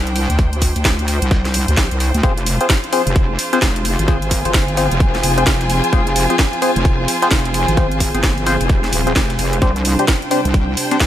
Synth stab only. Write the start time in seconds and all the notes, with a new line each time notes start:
2.24 C4 F4 G#4 C5
2.61 C4 F4 G#4 C5
2.93 C4 F4 G#4 C5
3.53 C4 F4 G#4 C5
4.08 C4 F4 G#4 C5
4.45 C4 F4 G#4 C5
4.77 C4 F4 G#4 C5
5.38 C4 F4 G#4 C5
5.93 C4 F4 G#4 C5
6.30 C4 F4 G#4 C5
6.62 C4 F4 G#4 C5
7.22 C4 F4 G#4 C5
7.77 C4 F4 G#4 C5
8.15 C4 F4 G#4 C5
8.46 C4 F4 G#4 C5
9.07 C4 F4 G#4 C5
9.62 C4 D4 G4 C5
9.99 C4 D4 G4 C5
10.31 C4 D4 G4 C5
10.91 C4 D4 G4 C5